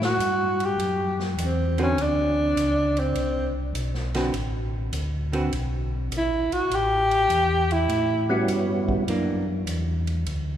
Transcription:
Already playing: tonewheel organ A2
0.02 tenor saxophone F#4, snare
0.19 tonewheel organ G2, hi-hat pedal, ride
0.60 ride
0.65 tenor saxophone G4
0.78 tonewheel organ F#2, ride
1.20 snare
1.37 tonewheel organ E2, hi-hat pedal, ride
1.45 tenor saxophone C4
1.78 hollow-body jazz guitar D3 C4 F#4 B4, ride
1.83 tenor saxophone C#4
1.97 tonewheel organ D2, ride
2.03 tenor saxophone D4
2.56 tonewheel organ C#2, hi-hat pedal, ride
2.97 tenor saxophone C4, ride
3.15 tonewheel organ C2, ride
3.74 tonewheel organ B1, hi-hat pedal, ride
3.94 snare
4.14 hollow-body jazz guitar D3 C4 F#4 B4, snare, ride
4.33 tonewheel organ A1, ride
4.93 tonewheel organ D2, hi-hat pedal, ride
5.32 hollow-body jazz guitar D3 C4 F#4 B4, ride
5.52 tonewheel organ B1, ride
6.10 tonewheel organ A#1, hi-hat pedal, ride
6.18 tenor saxophone E4
6.51 tonewheel organ A#1, tenor saxophone F#4, ride
6.70 tonewheel organ A1, ride
6.74 tenor saxophone G4
7.11 ride
7.30 tonewheel organ E2, hi-hat pedal, ride
7.71 tenor saxophone E4, ride
7.89 tonewheel organ A2, ride
8.29 tonewheel organ G3 B3 C#4 E4 F#4, hollow-body jazz guitar G3 C#4 F#4
8.48 tonewheel organ G2, hi-hat pedal, ride
8.89 kick
9.08 tonewheel organ F#2, hollow-body jazz guitar E3 A#3 D4, ride
9.67 tonewheel organ E2, hi-hat pedal, ride
10.07 ride
10.26 tonewheel organ D2, ride

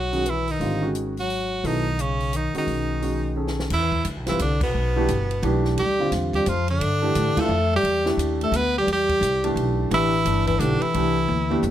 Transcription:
Already playing: upright bass B1, bass clarinet F#3, tenor saxophone F#4
0.13 grand piano D#3 G#3 C#4 F#4, open hi-hat
0.26 bass clarinet E3, closed hi-hat
0.30 tenor saxophone E4
0.48 bass clarinet D#3, tenor saxophone D#4, open hi-hat
0.60 upright bass G#1, grand piano D3 G3 C4 F4, open hi-hat
0.82 grand piano D#3 G#3 C#4 F#4
0.95 closed hi-hat
1.17 bass clarinet F#3, tenor saxophone F#4, open hi-hat
1.30 open hi-hat
1.64 upright bass B1, bass clarinet D#3, grand piano F#3 B3 E4 A4, tenor saxophone D#4, open hi-hat
1.99 bass clarinet C#3, tenor saxophone C#4, closed hi-hat
2.20 open hi-hat
2.33 bass clarinet D#3, tenor saxophone D#4, closed hi-hat
2.54 grand piano D#3 G#3 C#4 F#4, bass clarinet D#3, tenor saxophone D#4, muted upright bass stroke, open hi-hat
2.67 upright bass B1, open hi-hat
3.01 grand piano D#3 G#3 C#4 F#4, open hi-hat
3.36 grand piano D#3 C#4 G#4 A4
3.47 snare
3.60 snare
3.70 upright bass E2, bass clarinet E3, tenor saxophone E4, kick, crash
3.92 kick
4.05 upright bass D2, hi-hat pedal, ride
4.16 upright bass B1
4.26 upright bass G1, bass clarinet E3, grand piano G3 C4 F4 B4, tenor saxophone E4, snare, ride
4.39 upright bass C2, bass clarinet D3, tenor saxophone D4, hi-hat pedal, ride
4.61 bass clarinet B2, tenor saxophone B3, kick, crash
4.74 upright bass B1
4.96 grand piano E3 A3 D4 G4
5.08 upright bass G1, hi-hat pedal, ride
5.31 ride
5.43 upright bass B1, grand piano E3 A3 D4 G4, ride
5.65 snare
5.78 upright bass D2, bass clarinet G3, tenor saxophone G4, ride
6.00 grand piano D3 G3 C4 F4
6.12 upright bass E2, snare, hi-hat pedal, ride
6.33 bass clarinet G3, tenor saxophone G4, kick, ride
6.46 upright bass F2, bass clarinet F3, tenor saxophone F4, hi-hat pedal, ride
6.68 bass clarinet D3, tenor saxophone D4, ride
6.80 upright bass G2, ride
7.02 grand piano E3 A3 D4 G4
7.15 upright bass A2, hi-hat pedal, ride
7.36 grand piano E3 A3 D4 F4, bass clarinet A3, tenor saxophone A4, muted upright bass stroke, kick, crash
7.49 upright bass F2
7.75 bass clarinet G3, tenor saxophone G4
7.83 upright bass E2, ride
8.06 grand piano A3 D4 E4 G4, snare
8.17 upright bass D#2, hi-hat pedal, ride
8.41 bass clarinet A3, tenor saxophone A4, ride
8.52 upright bass D2, tenor saxophone B4, hi-hat pedal, ride
8.56 bass clarinet B3
8.78 bass clarinet G3, tenor saxophone G4
8.87 upright bass E2, bass clarinet G3, ride
8.92 tenor saxophone G4
9.09 kick, ride
9.21 upright bass C2, hi-hat pedal, ride
9.44 grand piano E3 A3 D4 G4, ride
9.56 upright bass B1, ride
9.91 upright bass A1, grand piano E3 A3 D4 G4, bass clarinet E3, tenor saxophone E4, ride
10.25 upright bass G1, grand piano E3 A3 D4 E4, hi-hat pedal, ride
10.46 bass clarinet E3, tenor saxophone E4, kick, ride
10.57 upright bass B1, bass clarinet D3, grand piano E3 A3 D4 G4, tenor saxophone D4, hi-hat pedal, ride
10.79 bass clarinet E3, tenor saxophone E4, muted upright bass stroke, ride
10.94 upright bass C2, grand piano E3 A3 D4 G4, ride
11.28 upright bass D2, high tom
11.50 grand piano E3 A3 D4 G4, high tom
11.63 upright bass E2, floor tom, hi-hat pedal

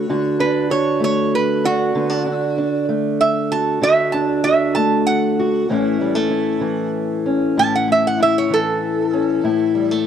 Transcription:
Already playing: steel-string acoustic guitar A3 D4, resonator guitar played with a steel bar C#5
0.09 steel-string acoustic guitar D3 F#4
0.40 steel-string acoustic guitar D4, resonator guitar played with a steel bar B4
0.70 steel-string acoustic guitar F#4, resonator guitar played with a steel bar C#5
1.00 steel-string acoustic guitar A3, resonator guitar played with a steel bar C#5
1.35 resonator guitar played with a steel bar B4
1.64 steel-string acoustic guitar D4, resonator guitar played with a steel bar F#4
1.95 steel-string acoustic guitar D3 B3
2.10 steel-string acoustic guitar D4
2.26 steel-string acoustic guitar D4
2.58 steel-string acoustic guitar D4
2.89 steel-string acoustic guitar A3
3.21 resonator guitar played with a steel bar E5
3.52 steel-string acoustic guitar F#4, resonator guitar played with a steel bar A5
3.82 steel-string acoustic guitar D3 F#4, resonator guitar played with a steel bar E5
4.12 steel-string acoustic guitar D4, resonator guitar played with a steel bar A5
4.44 steel-string acoustic guitar F#4, resonator guitar played with a steel bar E5
4.75 steel-string acoustic guitar A3, resonator guitar played with a steel bar A5
5.07 resonator guitar played with a steel bar F#5
5.39 steel-string acoustic guitar F#4
5.69 steel-string acoustic guitar A2 E3 A3 C#4 E4
6.01 steel-string acoustic guitar G3
6.15 steel-string acoustic guitar A3
6.30 steel-string acoustic guitar E4
6.61 steel-string acoustic guitar E3
7.26 steel-string acoustic guitar C#4
7.57 steel-string acoustic guitar A2 E4, resonator guitar played with a steel bar A5
7.75 resonator guitar played with a steel bar F#5
7.88 steel-string acoustic guitar A3
7.92 resonator guitar played with a steel bar E5
8.07 resonator guitar played with a steel bar F#5
8.20 steel-string acoustic guitar E4, resonator guitar played with a steel bar E5
8.38 resonator guitar played with a steel bar C#5
8.50 steel-string acoustic guitar E3, resonator guitar played with a steel bar A4
9.13 steel-string acoustic guitar C#4
9.44 steel-string acoustic guitar A2 E4
9.75 steel-string acoustic guitar G3
9.91 steel-string acoustic guitar A3

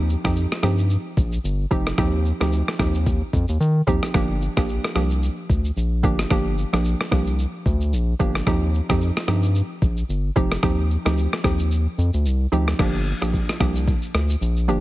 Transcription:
Already playing: analog synth bass D#2
0.09 shaker
0.24 analog synth bass F2, synth pluck F3 C4 D#4 G4, kick, cross-stick, shaker
0.36 shaker
0.52 cross-stick
0.63 analog synth bass G2, synth pluck F3 C4 D#4 G4, cross-stick, shaker
0.78 shaker
0.90 shaker
1.17 analog synth bass A#1, kick, shaker
1.32 shaker
1.44 analog synth bass G1, shaker
1.71 analog synth bass F1, synth pluck F3 C4 D#4 G4, kick, shaker
1.87 cross-stick, shaker
1.98 analog synth bass D#2, synth pluck F3 C4 D#4 G4, kick, cross-stick, shaker
2.26 shaker
2.40 analog synth bass D2, synth pluck F3 C4 D#4 G4, cross-stick, shaker
2.52 shaker
2.68 cross-stick
2.79 analog synth bass D#2, synth pluck F3 C4 D#4 G4, kick, cross-stick, shaker
2.94 shaker
3.06 kick, shaker
3.33 analog synth bass F2, kick, shaker
3.48 analog synth bass D#2, shaker
3.60 analog synth bass D#3, shaker
3.87 analog synth bass D#2, synth pluck F3 C4 D#4 G4, kick, shaker
4.03 cross-stick, shaker
4.14 analog synth bass G1, synth pluck F3 A#3 D4 G4, kick, cross-stick, shaker
4.42 shaker
4.57 analog synth bass A#1, synth pluck F3 A#3 D4 G4, kick, cross-stick, shaker
4.68 shaker
4.84 cross-stick
4.95 analog synth bass C2, synth pluck F3 A#3 D4 G4, cross-stick, shaker
5.10 shaker
5.23 shaker
5.50 analog synth bass D2, kick, shaker
5.65 shaker
5.77 analog synth bass A#1, shaker
6.03 analog synth bass G1, synth pluck F3 A#3 D4 G4, kick, shaker
6.19 cross-stick, shaker
6.30 analog synth bass G1, synth pluck F3 A#3 D4 G4, kick, cross-stick, shaker
6.58 shaker
6.73 analog synth bass A#1, synth pluck F3 A#3 D4 G4, cross-stick, shaker
6.85 shaker
7.01 cross-stick
7.11 analog synth bass C2, synth pluck F3 A#3 D4 G4, kick, cross-stick, shaker
7.27 shaker
7.39 shaker
7.66 analog synth bass D2, kick, shaker
7.81 shaker
7.93 analog synth bass A#1, shaker
8.19 analog synth bass G1, synth pluck F3 A#3 D4 G4, kick, shaker
8.35 cross-stick, shaker
8.46 analog synth bass D#2, synth pluck F3 C4 D#4 G4, kick, cross-stick, shaker
8.74 shaker
8.89 analog synth bass F2, synth pluck F3 C4 D#4 G4, kick, cross-stick, shaker
9.01 shaker
9.17 cross-stick
9.28 analog synth bass G2, synth pluck F3 C4 D#4 G4, cross-stick, shaker
9.43 shaker
9.55 shaker
9.82 analog synth bass A#1, kick, shaker
9.97 shaker
10.09 analog synth bass G1, shaker
10.36 analog synth bass F1, synth pluck F3 C4 D#4 G4, kick, shaker
10.52 cross-stick, shaker
10.63 analog synth bass D#2, synth pluck F3 C4 D#4 G4, kick, cross-stick, shaker
10.90 shaker
11.05 analog synth bass D2, synth pluck F3 C4 D#4 G4, cross-stick, shaker
11.17 shaker
11.33 cross-stick
11.44 analog synth bass D#2, synth pluck F3 C4 D#4 G4, kick, cross-stick, shaker
11.59 shaker
11.71 shaker
11.98 analog synth bass F2, shaker
12.13 analog synth bass D2, shaker
12.25 analog synth bass C2, shaker
12.52 analog synth bass D2, synth pluck F3 C4 D#4 G4, shaker
12.68 cross-stick, shaker
12.79 analog synth bass G1, synth pluck F3 A#3 D4 G4, kick, cross-stick, crash, shaker
12.95 shaker
13.07 shaker
13.22 analog synth bass A#1, synth pluck F3 A#3 D4 G4, cross-stick, shaker
13.33 kick, shaker
13.49 cross-stick, shaker
13.60 analog synth bass C2, synth pluck F3 A#3 D4 G4, kick, cross-stick, shaker
13.75 shaker
13.88 kick, shaker
14.02 shaker
14.14 analog synth bass D2, cross-stick, shaker
14.29 shaker
14.41 analog synth bass A#1, shaker
14.57 shaker
14.68 analog synth bass G1, synth pluck F3 A#3 D4 G4, shaker

